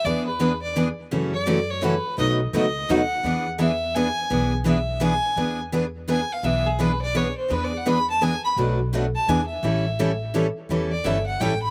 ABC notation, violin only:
X:1
M:3/4
L:1/8
Q:"Swing" 1/4=169
K:Emix
V:1 name="Violin"
d B2 d z2 | z d2 c B2 | ^d z d2 f2- | f z e2 g2- |
g z e2 g2- | g z3 g =f | e G B d c =c | (3B d f b a g b |
z3 a g e- | e4 z2 | z d e f =g b |]